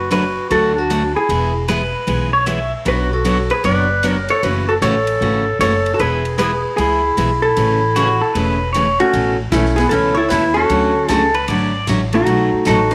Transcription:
Already playing: F#1 B4
0.10 D3 F#3 A3 D4 F#4 B4, hi-hat pedal, ride
0.50 D2 D3 F#3 A3 D4 F#4 A4, ride
0.75 D4 F#4
0.90 D3 F#3 A3 D4 F#4, hi-hat pedal, ride
1.14 E4 G#4
1.29 E1 E3 G#3 B3 E4 G#4, ride
1.68 E3 G#3 B3 E4 G#4 B4, hi-hat pedal, ride
2.07 B1 E3 G#3 B3 E4 G#4, ride
2.33 C#5
2.46 E3 G#3 B3 E4 G#4 E5, hi-hat pedal, ride
2.85 B1 B2 F#3 B3 D4 F#4 B4 C#5, ride
3.13 F#4 A4
3.24 B2 F#3 B3 D4 F#4 C#5, hi-hat pedal, ride
3.50 G#4 B4, ride
3.64 F#1 B2 F#3 B3 D4 F#4 B4 C#5 D5, ride
4.03 B2 F#3 B3 D4 F#4 C#5, hi-hat pedal, ride
4.08 A#4 C#5
4.29 A4 C#5, ride
4.43 F#1 C#3 E3 A3 C#4 F#4 B4, ride
4.68 F#4 A4
4.82 A1 C#3 E3 A3 C#4 F#4 A4 C#5, hi-hat pedal, ride
5.07 ride
5.21 G#1 C#3 E3 A3 C#4 F#4
5.59 F#1 C#3 E3 A3 C#4 F#4 A4 C#5, hi-hat pedal, ride
5.86 ride
5.94 F#4 A4
5.99 E1 E3 G#3 B3 E4 G#4 B4, ride
6.25 ride
6.38 E3 G#3 B3 E4 G#4 B4, hi-hat pedal, ride
6.77 C#2 E3 G#3 B3 E4 G#4, ride
7.17 B1 E3 G#3 B3 E4 G#4, hi-hat pedal, ride
7.42 E4 A4
7.57 A1 C#3 E3 A3 C#4 G#4, ride
7.96 C#3 E3 A3 C#4 F#4 G#4, hi-hat pedal, ride
8.21 A4
8.34 E1 C#3 E3 A3 C#4 G#4 B4, ride
8.73 C#3 E3 A3 C#4 G#4 C#5, hi-hat pedal, ride
8.99 A3 C#4 F#4, ride
9.13 A1 B2 E3 A3 C#4 A4, ride
9.51 B1 B2 E3 A3 C#4 E4 A4, snare, hi-hat pedal, ride
9.65 snare
9.76 B3 E4 G#4, snare, ride
9.89 C#2 B2 E3 A3 C#4 E4 A4, ride
9.93 A4
10.15 E4 A4 C#5
10.29 D#2 B2 E3 A3 C#4 E4 A4 B4, snare, hi-hat pedal, ride
10.54 C#4 F#4 A4
10.69 D2 D3 F#3 A3 C#4 F#4, ride
11.06 C#2 D3 F#3 F4 G#4 A4, snare, hi-hat pedal, ride
11.10 A3 C#4 F#4
11.34 B4, ride
11.48 G#1 D3 F#3 A3 C#4 F#4 D5, ride
11.87 A1 D3 F#3 A3 C#4 F#4, snare, hi-hat pedal, ride
12.13 A3 D#4 F#4, ride
12.26 B1 B2 F#3 A3 D#4 F#4, ride
12.53 muted upright bass stroke
12.65 A1 B2 F#3 A3 D#4 F#4 A4, snare, hi-hat pedal, ride
12.91 D#4 B4, ride

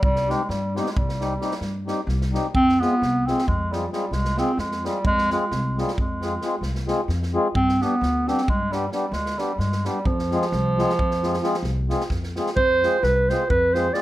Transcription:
0.02 C2 G3, kick
0.16 snare
0.27 G3 G#3 C4 D#4 G4, snare
0.49 G2 G3, snare
0.75 G3 G#3 C4 D#4 G4, snare
0.82 B3
0.86 G#3, snare
0.92 G#3
0.96 C2 G3, kick
1.09 snare
1.19 G3 C4 D#4 G4, snare
1.40 G3 C4 D#4 G4, snare
1.51 snare
1.61 G2, snare
1.86 G3 C4 D#4 G4, snare
2.07 C2, snare
2.21 snare
2.32 G3 C4 D#4 G4, snare
2.54 F2 C4, kick
2.69 snare
2.80 G#3 B3 C4 F4 G#4, snare
3.02 C2, snare
3.26 G#3 C4 F4 G#4, snare
3.38 snare
3.48 F2 G#3, kick
3.71 G3 G#3 C4 F4 G#4, snare
3.91 G3 G#3 C4 F4 G#4, snare
4.11 C2 G#3, snare
4.25 snare
4.37 G#3 C4 F4 G#4, snare
4.57 F2 G#3, snare
4.72 snare
4.84 G3 G#3 C4 F4 G#4, snare
5.05 F2 G#3, kick
5.18 snare
5.30 G#3 C4 F4 G#4, snare
5.51 C2, snare
5.77 G3 G#3 C4 F4 G#4, snare
5.88 snare
5.98 F2 G#3, kick
6.21 G#3 C4 F4 G#4, snare
6.42 G#3 C4 F4 G#4, snare
6.61 C2, snare
6.75 snare
6.87 G#3 C4 F4 G#4, snare
7.08 F2, snare
7.23 snare
7.33 G#3 C4 F4 G#4
7.54 G2 C4, kick
7.69 snare
7.81 G3 B3 D4 G4, snare
8.01 D2, snare
8.27 G3 B3 C4 D4 G4, snare
8.38 snare
8.48 G2 G#3, kick
8.71 G3 B3 D4 G4, snare
8.92 G3 B3 D4 G4, snare
9.12 D2 G#3, snare
9.26 snare
9.38 G3 B3 D4 G4, snare
9.58 G2 G#3, snare
9.72 snare
9.85 G3 B3 D4 G4, snare
10.05 F2 F3, kick
10.19 snare
10.31 G#3 C4 F4 G#4, snare
10.42 snare
10.52 C2, snare
10.77 G#3 C4 F4 G#4, snare
10.89 snare
10.99 F2, kick
11.11 snare
11.22 G#3 C4 F4 G#4, snare
11.34 snare
11.42 G#3 C4 F4 G#4, snare
11.54 snare
11.63 C2, snare
11.89 G#3 C4 F4 G#4, snare
12.01 snare
12.10 F2, kick, snare
12.23 snare
12.36 G#3 C4 F4 G#4, snare
12.47 snare
12.56 F2 C5, kick
12.83 G#3 C4 F4 G#4, snare
13.03 C2 B4, snare
13.29 G#3 C4 F4 G#4 C5, snare
13.50 F2 B4, kick
13.73 G#3 C4 F4 G#4 C5, snare
13.93 G#3 C4 F4 G#4 D5, snare

